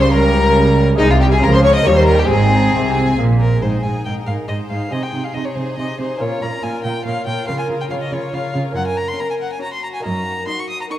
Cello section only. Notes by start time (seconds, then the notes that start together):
Already playing: C#3
0.99 C3
1.42 C#3
1.85 D#3
2.30 G#2
2.74 C3
3.18 A#2
3.62 G#2
3.84 G#2
4.06 G#2
4.26 G#2
4.48 G#2
4.70 G#2
4.92 C3
5.13 C3
5.35 C3
5.56 C3
5.77 C3
5.99 C3
6.20 A#2
6.42 A#2
6.63 A#2
6.85 A#2
7.06 A#2
7.27 A#2
7.48 C#3
7.69 C#3
7.90 C#3
8.12 C#3
8.33 C#3
8.54 C#3
8.76 F#2
10.04 F#2